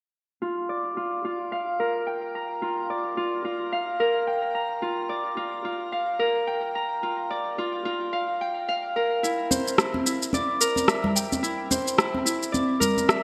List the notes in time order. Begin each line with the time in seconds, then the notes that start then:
0.42 F4
0.69 D5
0.97 F4
1.25 F4
1.52 F5
1.80 A#4
2.07 G5
2.35 A#5
2.62 F4
2.90 D5
3.17 F4
3.45 F4
3.72 F5
4.00 A#4
4.27 G5
4.55 A#5
4.82 F4
5.09 D5
5.37 F4
5.65 F4
5.92 F5
6.19 A#4
6.47 G5
6.75 A#5
7.03 F4
7.30 D5
7.58 F4
7.85 F4
8.13 F5
8.41 G5
8.69 F5
8.96 A#4
9.23 E4, shaker
9.51 C5, high conga, shaker
9.68 shaker
9.78 E4, cross-stick, shaker
9.94 high conga
10.06 E4, shaker
10.23 shaker
10.33 D5, high conga, shaker
10.61 A#4, shaker
10.76 high conga, shaker
10.88 E5, cross-stick, shaker
11.04 low conga
11.16 G5, shaker
11.32 high conga, shaker
11.43 E4, shaker
11.71 C5, high conga, shaker
11.88 shaker
11.98 E4, cross-stick, shaker
12.15 high conga
12.25 E4, shaker
12.43 shaker
12.52 D5, high conga, shaker
12.80 A#4, low conga, shaker
12.97 high conga, shaker
13.08 E5, cross-stick, shaker